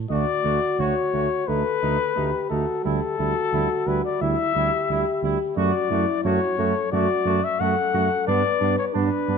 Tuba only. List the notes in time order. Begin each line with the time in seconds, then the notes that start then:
0.10 D2
0.44 D2
0.78 D2
1.13 D2
1.48 D2
1.83 D2
2.17 D2
2.50 D2
2.85 D2
3.19 D2
3.52 D2
3.86 D2
4.21 D2
4.55 D2
4.89 D2
5.22 D2
5.56 F#2
5.90 F#2
6.24 F#2
6.58 F#2
6.93 F#2
7.25 F#2
7.60 F#2
7.94 F#2
8.28 G2
8.61 G2
8.95 G2
9.28 G2